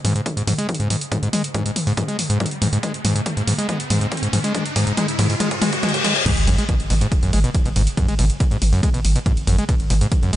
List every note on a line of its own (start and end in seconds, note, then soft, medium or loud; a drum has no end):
0.00 riser medium
0.05 0.14 G#2 loud
0.05 open hi-hat loud
0.05 mid tom medium
0.15 0.21 G#2 medium
0.15 closed hi-hat medium
0.26 kick loud
0.26 closed hi-hat medium
0.26 mid tom medium
0.37 0.43 G#2 loud
0.37 closed hi-hat medium
0.47 0.53 G#2 loud
0.47 open hi-hat loud
0.47 mid tom medium
0.58 0.67 G#3 medium
0.58 closed hi-hat medium
0.69 kick loud
0.69 closed hi-hat soft
0.69 mid tom medium
0.74 closed hi-hat medium
0.80 0.88 G#2 loud
0.80 closed hi-hat medium
0.90 0.96 G#2 medium
0.90 open hi-hat loud
0.90 mid tom medium
1.01 closed hi-hat medium
1.12 1.18 G#2 loud
1.12 kick loud
1.12 closed hi-hat medium
1.12 mid tom medium
1.23 1.28 G#2 loud
1.23 closed hi-hat medium
1.33 1.42 G#3 medium
1.33 open hi-hat loud
1.33 mid tom medium
1.44 closed hi-hat medium
1.54 1.64 G#2 loud
1.54 kick loud
1.54 closed hi-hat medium
1.54 mid tom medium
1.65 1.71 G#2 medium
1.65 closed hi-hat medium
1.76 open hi-hat loud
1.76 mid tom medium
1.87 1.93 G#2 loud
1.87 open hi-hat medium
1.97 2.03 G#2 loud
1.97 kick loud
1.97 closed hi-hat medium
1.97 mid tom medium
2.08 2.17 G#3 medium
2.08 closed hi-hat medium
2.19 open hi-hat loud
2.19 mid tom medium
2.30 2.38 G#2 loud
2.30 closed hi-hat medium
2.40 2.46 G#2 medium
2.40 kick loud
2.40 closed hi-hat medium
2.40 mid tom medium
2.46 closed hi-hat medium
2.51 closed hi-hat medium
2.62 2.68 G#2 loud
2.62 open hi-hat loud
2.62 mid tom medium
2.73 2.78 G#2 loud
2.73 closed hi-hat medium
2.83 2.92 G#3 medium
2.83 kick loud
2.83 closed hi-hat medium
2.83 mid tom medium
2.94 closed hi-hat medium
3.05 3.14 G#2 medium
3.05 open hi-hat loud
3.05 mid tom medium
3.15 3.21 G#2 medium
3.15 closed hi-hat medium
3.26 kick loud
3.26 closed hi-hat medium
3.26 mid tom medium
3.37 3.43 G#2 loud
3.37 closed hi-hat medium
3.47 3.53 G#2 medium
3.47 open hi-hat loud
3.47 mid tom medium
3.58 3.67 G#3 medium
3.58 closed hi-hat medium
3.69 3.78 G#3 medium
3.69 kick loud
3.69 closed hi-hat medium
3.69 mid tom medium
3.80 closed hi-hat medium
3.90 3.99 G#2 loud
3.90 open hi-hat loud
3.90 mid tom medium
4.01 4.07 G#2 medium
4.01 closed hi-hat medium
4.12 kick loud
4.12 closed hi-hat medium
4.12 mid tom medium
4.17 closed hi-hat medium
4.23 4.28 G#2 loud
4.23 closed hi-hat medium
4.33 4.39 G#2 medium
4.33 open hi-hat loud
4.33 mid tom medium
4.44 4.53 G#3 medium
4.44 closed hi-hat medium
4.54 4.64 G#3 medium
4.54 kick loud
4.54 closed hi-hat medium
4.54 mid tom medium
4.66 closed hi-hat medium
4.76 4.85 G#2 loud
4.76 kick loud
4.76 open hi-hat loud
4.76 mid tom medium
4.87 4.93 G#2 medium
4.87 closed hi-hat medium
4.97 5.07 G#3 medium
4.97 kick loud
4.97 closed hi-hat medium
4.97 mid tom medium
5.08 closed hi-hat medium
5.19 5.28 G#2 loud
5.19 kick loud
5.19 open hi-hat loud
5.19 mid tom medium
5.30 5.36 G#2 medium
5.30 open hi-hat medium
5.40 5.49 G#3 medium
5.40 kick loud
5.40 closed hi-hat medium
5.40 mid tom medium
5.40 reverse cymbal medium
5.51 kick medium
5.51 closed hi-hat medium
5.62 5.71 G#3 medium
5.62 kick loud
5.62 open hi-hat loud
5.62 mid tom medium
5.73 kick medium
5.73 closed hi-hat medium
5.83 5.92 G#3 medium
5.83 kick loud
5.83 closed hi-hat soft
5.83 mid tom medium
5.89 closed hi-hat medium
5.94 kick medium
5.94 closed hi-hat medium
6.04 6.14 G#3 medium
6.04 kick loud
6.04 open hi-hat loud
6.04 mid tom medium
6.16 kick medium
6.16 closed hi-hat medium
6.26 6.32 G#2 loud
6.26 kick loud
6.26 closed hi-hat medium
6.26 mid tom medium
6.26 crash loud
6.26 ride medium
6.26 sub drop medium
6.37 6.47 G#1 medium
6.37 closed hi-hat medium
6.47 6.58 G#1 loud
6.47 6.56 F#2 loud
6.47 open hi-hat loud
6.47 mid tom medium
6.58 6.64 G#3 medium
6.58 closed hi-hat medium
6.69 6.75 B2 medium
6.69 kick loud
6.69 closed hi-hat medium
6.69 mid tom medium
6.69 ride medium
6.80 6.90 G#1 medium
6.80 closed hi-hat medium
6.90 7.01 G#1 loud
6.90 6.94 B2 medium
6.90 open hi-hat loud
6.90 mid tom medium
7.01 7.07 G#2 loud
7.01 closed hi-hat medium
7.12 kick loud
7.12 closed hi-hat medium
7.12 mid tom medium
7.12 ride medium
7.23 7.33 G#1 medium
7.23 7.31 F#2 loud
7.23 closed hi-hat medium
7.33 7.44 G#1 loud
7.33 7.39 G#3 medium
7.33 open hi-hat loud
7.33 mid tom medium
7.44 7.50 B2 medium
7.44 closed hi-hat medium
7.55 kick loud
7.55 closed hi-hat medium
7.55 mid tom medium
7.55 ride medium
7.65 7.75 G#1 medium
7.65 7.69 B2 medium
7.65 closed hi-hat medium
7.76 7.87 G#1 loud
7.76 7.82 G#2 loud
7.76 open hi-hat loud
7.76 mid tom medium
7.87 closed hi-hat medium
7.97 8.06 F#2 loud
7.97 kick loud
7.97 closed hi-hat medium
7.97 mid tom medium
7.97 ride medium
8.08 8.18 G#1 medium
8.08 8.14 G#3 medium
8.08 closed hi-hat medium
8.19 8.30 G#1 loud
8.19 8.25 B2 medium
8.19 open hi-hat loud
8.19 mid tom medium
8.30 closed hi-hat medium
8.40 8.44 B2 medium
8.40 kick loud
8.40 closed hi-hat medium
8.40 mid tom medium
8.40 ride medium
8.51 8.61 G#1 medium
8.51 8.57 G#2 loud
8.51 closed hi-hat medium
8.62 8.72 G#1 loud
8.62 open hi-hat loud
8.62 mid tom medium
8.73 8.81 F#2 loud
8.73 open hi-hat medium
8.83 8.89 G#3 medium
8.83 kick loud
8.83 closed hi-hat medium
8.83 mid tom medium
8.83 ride medium
8.94 9.04 G#1 medium
8.94 9.00 B2 medium
8.94 closed hi-hat medium
9.05 9.15 G#1 loud
9.05 open hi-hat loud
9.05 mid tom medium
9.15 9.19 B2 medium
9.15 closed hi-hat medium
9.26 9.32 G#2 loud
9.26 kick loud
9.26 closed hi-hat medium
9.26 mid tom medium
9.26 ride medium
9.37 9.47 G#1 medium
9.37 closed hi-hat medium
9.47 9.58 G#1 loud
9.47 9.56 F#2 loud
9.47 open hi-hat loud
9.47 mid tom medium
9.58 9.64 G#3 medium
9.58 closed hi-hat medium
9.69 9.75 B2 medium
9.69 kick loud
9.69 closed hi-hat medium
9.69 mid tom medium
9.69 ride medium
9.80 9.90 G#1 medium
9.80 closed hi-hat medium
9.90 10.01 G#1 loud
9.90 9.94 B2 medium
9.90 open hi-hat loud
9.90 mid tom medium
10.01 10.07 G#2 loud
10.01 closed hi-hat medium
10.12 kick loud
10.12 closed hi-hat medium
10.12 mid tom medium
10.12 ride medium
10.23 10.33 G#1 medium
10.23 10.31 F#2 loud
10.23 closed hi-hat medium
10.33 10.36 G#3 medium